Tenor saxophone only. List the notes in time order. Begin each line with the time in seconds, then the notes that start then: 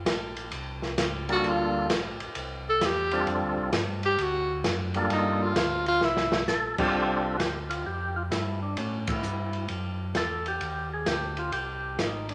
1.32 F#4
1.49 F4
2.69 A4
2.86 G4
4.05 G4
4.22 F#4
5.13 D#4
5.43 F4
5.88 F4
6.05 E4